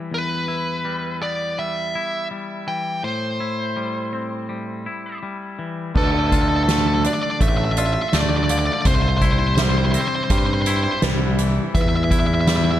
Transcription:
0.00 2.67 E3 soft
0.00 0.84 G3 soft
0.00 0.11 C4 soft
0.00 0.48 E4 soft
0.11 1.94 E2 soft
0.11 1.22 B4 soft
0.48 1.94 E4 soft
0.85 1.57 G3 soft
1.22 3.04 B3 soft
1.22 1.59 D5 medium
1.58 2.30 G3 soft
1.58 2.27 E5 medium
1.95 3.04 E4 soft
2.31 3.04 G3 soft
2.67 3.04 E3 soft
2.67 3.02 G5 medium
3.03 4.86 A2 soft
3.03 5.19 C5 medium
3.40 4.85 E4 soft
3.77 4.48 G3 soft
4.13 5.95 C4 soft
4.49 5.21 G3 soft
4.86 5.96 E4 soft
5.23 5.96 G3 soft
5.59 5.95 E3 soft
5.95 7.06 D2 medium
5.95 7.77 D3 medium
5.95 6.04 A4 medium
5.95 6.68 B4 medium
5.95 kick medium
5.95 crash medium
6.04 6.11 A4 soft
6.12 6.19 A4 medium
6.19 6.27 A4 medium
6.27 6.33 A4 medium
6.32 7.76 F4 medium
6.32 6.41 A4 soft
6.32 kick medium
6.32 closed hi-hat medium
6.42 6.49 A4 medium
6.49 6.56 A4 medium
6.56 6.64 A4 medium
6.64 7.39 A3 medium
6.64 6.71 A4 medium
6.68 6.79 A4 medium
6.68 snare medium
6.68 closed hi-hat medium
6.79 6.87 A4 soft
6.88 6.94 A4 medium
6.94 7.02 A4 soft
7.04 8.86 D4 medium
7.04 7.76 D5 medium
7.04 7.14 D5 medium
7.04 closed hi-hat soft
7.14 7.22 D5 medium
7.23 7.31 D5 medium
7.31 7.39 D5 medium
7.41 7.96 A1 medium
7.41 8.12 A3 medium
7.41 7.48 E5 medium
7.41 kick medium
7.41 closed hi-hat medium
7.49 7.56 E5 medium
7.57 7.64 E5 medium
7.64 7.72 E5 medium
7.72 7.78 E5 medium
7.77 8.86 F4 medium
7.77 8.50 D5 medium
7.77 7.86 E5 medium
7.77 closed hi-hat medium
7.86 7.93 E5 medium
7.94 8.01 E5 medium
8.02 8.09 E5 medium
8.09 8.68 D2 medium
8.09 8.17 E5 medium
8.09 snare medium
8.09 closed hi-hat medium
8.13 8.86 A3 medium
8.13 8.20 D5 medium
8.21 8.28 D5 medium
8.30 8.37 D5 medium
8.37 8.43 D5 medium
8.44 8.51 D5 medium
8.49 8.86 D3 medium
8.49 8.58 D5 medium
8.49 9.22 F5 medium
8.49 closed hi-hat medium
8.59 8.66 D5 medium
8.66 8.73 D5 medium
8.73 8.81 D5 medium
8.82 9.96 C2 medium
8.82 10.67 C3 medium
8.82 8.86 D5 medium
8.82 kick medium
8.82 closed hi-hat medium
8.87 8.94 C5 medium
8.95 9.02 C5 medium
9.02 9.08 C5 medium
9.09 9.16 C5 medium
9.18 9.24 C5 medium
9.18 kick medium
9.18 closed hi-hat medium
9.22 10.66 E4 medium
9.22 9.32 C5 medium
9.32 9.39 C5 medium
9.39 9.47 C5 medium
9.48 9.55 C5 medium
9.55 10.30 G3 medium
9.55 9.62 C5 medium
9.55 10.31 E5 medium
9.55 snare medium
9.55 closed hi-hat medium
9.62 9.70 C5 medium
9.70 9.78 C5 medium
9.78 9.85 C5 medium
9.86 9.92 C5 medium
9.92 11.75 C4 medium
9.92 10.00 C5 medium
9.92 closed hi-hat medium
10.01 10.07 C5 medium
10.08 10.15 C5 medium
10.15 10.23 C5 medium
10.24 10.31 C5 medium
10.30 10.85 G2 medium
10.30 11.02 G3 medium
10.30 10.38 C5 medium
10.30 11.03 G5 medium
10.30 kick medium
10.30 closed hi-hat medium
10.39 10.46 C5 medium
10.46 10.54 C5 medium
10.54 10.61 C5 medium
10.62 10.69 C5 medium
10.66 12.10 E4 medium
10.66 10.77 C5 medium
10.66 closed hi-hat medium
10.77 10.83 C5 medium
10.83 10.91 C5 medium
10.92 11.00 C5 soft
11.02 11.58 C2 medium
11.02 12.47 G3 medium
11.02 11.75 C5 medium
11.02 snare loud
11.02 closed hi-hat medium
11.38 12.80 E3 medium
11.38 closed hi-hat medium
11.75 12.80 E2 medium
11.75 12.47 B4 medium
11.75 11.81 E5 medium
11.75 kick medium
11.75 closed hi-hat medium
11.81 11.88 E5 medium
11.89 11.96 E5 medium
11.96 12.04 E5 medium
12.04 12.11 E5 medium
12.11 12.80 E4 medium
12.11 12.18 E5 medium
12.11 kick medium
12.11 closed hi-hat medium
12.20 12.26 E5 medium
12.27 12.34 E5 medium
12.34 12.40 E5 medium
12.41 12.48 E5 medium
12.47 12.80 G3 medium
12.47 12.56 E5 medium
12.47 snare medium
12.47 closed hi-hat medium
12.57 12.64 E5 medium
12.65 12.71 E5 medium
12.71 12.79 E5 medium

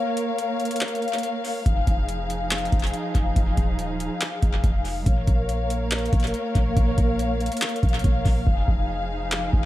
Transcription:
0.00 1.63 A#3 medium
0.00 1.63 A#4 medium
0.00 1.63 C#5 medium
0.00 5.02 F5 medium
0.17 closed hi-hat medium
0.38 closed hi-hat medium
0.60 closed hi-hat soft
0.65 closed hi-hat medium
0.71 closed hi-hat medium
0.76 closed hi-hat medium
0.81 clap loud
0.81 closed hi-hat medium
0.88 closed hi-hat medium
0.95 closed hi-hat medium
1.02 closed hi-hat soft
1.08 closed hi-hat soft
1.13 closed hi-hat medium
1.18 closed hi-hat medium
1.23 closed hi-hat medium
1.45 open hi-hat medium
1.66 1.86 F1 loud
1.66 5.03 F3 medium
1.66 5.03 D#4 medium
1.66 5.03 G#4 medium
1.66 kick loud
1.66 closed hi-hat medium
1.87 2.69 F1 loud
1.87 kick medium
1.87 closed hi-hat medium
2.09 closed hi-hat medium
2.30 closed hi-hat medium
2.51 clap loud
2.51 closed hi-hat soft
2.58 closed hi-hat medium
2.65 closed hi-hat medium
2.72 2.93 F1 loud
2.72 kick loud
2.72 closed hi-hat medium
2.79 closed hi-hat medium
2.84 closed hi-hat medium
2.87 closed hi-hat medium
2.94 closed hi-hat medium
3.15 3.35 F1 loud
3.15 kick medium
3.15 closed hi-hat medium
3.36 3.57 F1 loud
3.36 kick loud
3.36 closed hi-hat medium
3.57 4.09 D#1 loud
3.57 kick medium
3.57 closed hi-hat medium
3.79 closed hi-hat medium
4.00 closed hi-hat medium
4.21 clap loud
4.21 closed hi-hat medium
4.42 4.63 F1 loud
4.42 kick loud
4.42 closed hi-hat medium
4.64 5.05 F1 loud
4.64 kick loud
4.64 closed hi-hat medium
4.85 open hi-hat medium
5.06 5.27 A#1 loud
5.06 8.43 A#3 medium
5.06 8.43 A#4 medium
5.06 8.43 C#5 medium
5.06 9.65 F5 medium
5.06 kick loud
5.06 closed hi-hat medium
5.27 6.09 A#1 loud
5.27 kick medium
5.27 closed hi-hat medium
5.49 closed hi-hat medium
5.70 closed hi-hat medium
5.91 clap loud
5.91 closed hi-hat soft
5.99 closed hi-hat medium
6.06 closed hi-hat medium
6.13 6.33 A#1 loud
6.13 kick loud
6.13 closed hi-hat medium
6.20 closed hi-hat medium
6.24 closed hi-hat medium
6.27 closed hi-hat medium
6.34 closed hi-hat medium
6.55 6.76 A#1 loud
6.55 kick medium
6.55 closed hi-hat medium
6.77 6.97 A#1 loud
6.77 kick loud
6.77 closed hi-hat medium
6.98 7.50 A#1 loud
6.98 kick medium
6.98 closed hi-hat medium
7.19 closed hi-hat medium
7.41 closed hi-hat soft
7.46 closed hi-hat medium
7.52 closed hi-hat medium
7.57 closed hi-hat medium
7.62 clap loud
7.62 closed hi-hat medium
7.69 closed hi-hat medium
7.76 closed hi-hat medium
7.83 8.03 A#1 loud
7.83 kick loud
7.83 closed hi-hat soft
7.89 closed hi-hat soft
7.94 closed hi-hat medium
7.99 closed hi-hat medium
8.04 8.25 A#1 loud
8.04 kick loud
8.04 closed hi-hat medium
8.25 8.46 A#1 loud
8.25 kick medium
8.25 open hi-hat medium
8.47 8.67 F1 loud
8.47 9.65 F3 medium
8.47 9.65 D#4 medium
8.47 9.65 G#4 medium
8.47 kick loud
8.68 9.50 F1 loud
8.68 kick medium
9.32 clap loud
9.53 9.65 F1 loud
9.53 kick loud

